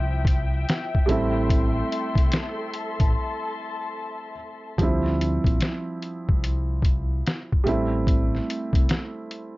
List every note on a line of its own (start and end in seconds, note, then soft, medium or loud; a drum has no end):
0.00 0.64 C2 medium
0.00 1.04 F3 medium
0.00 1.06 F3 medium
0.00 1.04 G3 medium
0.00 1.06 C4 medium
0.00 1.07 E4 medium
0.00 4.74 E5 medium
0.00 2.69 G5 medium
0.25 kick loud
0.25 closed hi-hat medium
0.69 snare loud
0.69 closed hi-hat medium
0.95 kick medium
1.06 1.81 A1 loud
1.06 4.32 G3 medium
1.06 4.33 A3 medium
1.06 4.34 C4 medium
1.06 4.75 A4 medium
1.06 4.75 C6 medium
1.06 closed hi-hat medium
1.11 4.34 E4 medium
1.50 kick loud
1.50 closed hi-hat medium
1.92 closed hi-hat medium
2.16 2.29 C2 medium
2.16 kick medium
2.16 closed hi-hat medium
2.32 snare loud
2.32 closed hi-hat medium
2.73 4.76 A5 medium
2.73 closed hi-hat medium
3.00 3.14 A1 medium
3.00 kick medium
3.00 closed hi-hat soft
4.78 5.37 D2 medium
4.78 7.62 F3 medium
4.78 7.62 G3 medium
4.78 7.63 C4 medium
4.78 kick loud
4.78 closed hi-hat medium
4.83 7.64 E4 medium
5.06 snare soft
5.21 closed hi-hat medium
5.44 5.58 A#1 medium
5.44 kick medium
5.44 closed hi-hat medium
5.61 snare loud
5.61 closed hi-hat medium
6.02 closed hi-hat medium
6.29 7.22 C2 medium
6.29 kick medium
6.44 closed hi-hat medium
6.82 kick medium
6.82 closed hi-hat medium
7.26 snare loud
7.26 closed hi-hat medium
7.52 kick medium
7.64 8.38 A1 loud
7.64 9.57 G3 medium
7.64 9.57 A3 medium
7.64 9.57 C4 medium
7.64 closed hi-hat medium
7.69 9.57 E4 medium
8.07 kick loud
8.07 closed hi-hat medium
8.35 snare soft
8.50 closed hi-hat medium
8.73 8.87 C2 medium
8.73 kick medium
8.73 closed hi-hat medium
8.89 snare loud
8.89 closed hi-hat medium
9.31 closed hi-hat medium